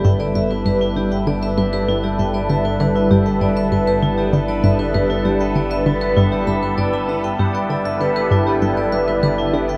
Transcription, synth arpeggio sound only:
X:1
M:4/4
L:1/16
Q:1/4=98
K:G
V:1 name="Synth arpeggio sound" clef=bass
G,, z G,,2 G,,2 D,2 D, z G,, z G,,2 G,,2 | D,2 D, z G,, z G,,2 G,,2 D,2 D, z G,, z | G,,2 G,,2 D,2 D, z G,, z G,,2 G,,2 D,2 | G,,2 D,2 D, z G,, z G,,2 G,,2 D,2 D, z |]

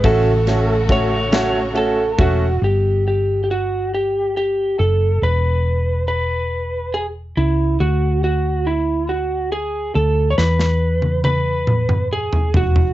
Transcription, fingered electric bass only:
X:1
M:6/8
L:1/8
Q:3/8=46
K:Emix
V:1 name="Fingered electric bass" clef=bass
A,,,4- A,,, E,,, | =G,,,4- G,,, F,,, | E,,,4- E,,, C,, | D,,4- D,, D,, |
E,,4- E,, E,,, |]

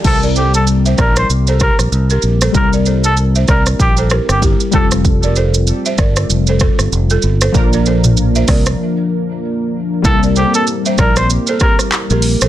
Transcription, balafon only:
X:1
M:4/4
L:1/16
Q:"Swing 16ths" 1/4=96
K:Cmix
V:1 name="Balafon"
z [Bd] [Ac] z2 [ce] [Bd] z2 [Ac] [GB] z2 [GB] z [Ac] | z [Bd] [Ac] z2 [ce] [Bd] z2 [Ac] [GB] z [EG] z [FA] z | z [Bd] [Ac] z2 [ce] [Bd] z2 [Ac] [FA] z2 [FA] z [Ac] | z [Bd] [Ac] z2 [ce] [Bd] z8 z |
z [Bd] [Ac] z2 [ce] [Bd] z2 [Ac] [GB] z2 [GB] z [Ac] |]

